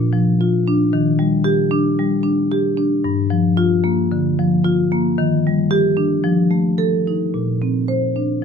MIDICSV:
0, 0, Header, 1, 2, 480
1, 0, Start_track
1, 0, Tempo, 530504
1, 833, Time_signature, 4, 2, 24, 8
1, 5639, Tempo, 550964
1, 7568, End_track
2, 0, Start_track
2, 0, Title_t, "Marimba"
2, 0, Program_c, 0, 12
2, 0, Note_on_c, 0, 46, 61
2, 116, Note_on_c, 0, 53, 57
2, 368, Note_on_c, 0, 65, 64
2, 499, Note_off_c, 0, 53, 0
2, 612, Note_on_c, 0, 62, 64
2, 743, Note_off_c, 0, 65, 0
2, 802, Note_off_c, 0, 46, 0
2, 841, Note_off_c, 0, 62, 0
2, 842, Note_on_c, 0, 51, 75
2, 1076, Note_on_c, 0, 55, 61
2, 1306, Note_on_c, 0, 67, 73
2, 1456, Note_off_c, 0, 55, 0
2, 1549, Note_on_c, 0, 62, 60
2, 1690, Note_off_c, 0, 67, 0
2, 1765, Note_off_c, 0, 51, 0
2, 1799, Note_on_c, 0, 55, 61
2, 1932, Note_off_c, 0, 62, 0
2, 2019, Note_on_c, 0, 62, 58
2, 2177, Note_off_c, 0, 55, 0
2, 2277, Note_on_c, 0, 67, 61
2, 2407, Note_off_c, 0, 62, 0
2, 2509, Note_on_c, 0, 62, 62
2, 2658, Note_off_c, 0, 67, 0
2, 2750, Note_off_c, 0, 62, 0
2, 2754, Note_on_c, 0, 43, 75
2, 2989, Note_on_c, 0, 53, 63
2, 3232, Note_on_c, 0, 65, 80
2, 3373, Note_off_c, 0, 53, 0
2, 3472, Note_on_c, 0, 58, 60
2, 3615, Note_off_c, 0, 65, 0
2, 3684, Note_off_c, 0, 43, 0
2, 3724, Note_on_c, 0, 50, 61
2, 3856, Note_off_c, 0, 58, 0
2, 3971, Note_on_c, 0, 53, 60
2, 4101, Note_off_c, 0, 50, 0
2, 4202, Note_on_c, 0, 65, 66
2, 4345, Note_off_c, 0, 53, 0
2, 4451, Note_on_c, 0, 58, 61
2, 4581, Note_off_c, 0, 65, 0
2, 4682, Note_off_c, 0, 58, 0
2, 4688, Note_on_c, 0, 51, 72
2, 4947, Note_on_c, 0, 55, 60
2, 5164, Note_on_c, 0, 67, 79
2, 5315, Note_off_c, 0, 55, 0
2, 5400, Note_on_c, 0, 62, 53
2, 5545, Note_off_c, 0, 67, 0
2, 5616, Note_off_c, 0, 51, 0
2, 5639, Note_off_c, 0, 62, 0
2, 5647, Note_on_c, 0, 53, 66
2, 5878, Note_on_c, 0, 57, 51
2, 6117, Note_on_c, 0, 69, 71
2, 6254, Note_off_c, 0, 57, 0
2, 6372, Note_on_c, 0, 63, 48
2, 6494, Note_off_c, 0, 69, 0
2, 6563, Note_off_c, 0, 53, 0
2, 6599, Note_off_c, 0, 63, 0
2, 6604, Note_on_c, 0, 46, 55
2, 6845, Note_on_c, 0, 60, 46
2, 7077, Note_on_c, 0, 72, 56
2, 7225, Note_off_c, 0, 60, 0
2, 7318, Note_on_c, 0, 62, 45
2, 7462, Note_off_c, 0, 72, 0
2, 7538, Note_off_c, 0, 46, 0
2, 7568, Note_off_c, 0, 62, 0
2, 7568, End_track
0, 0, End_of_file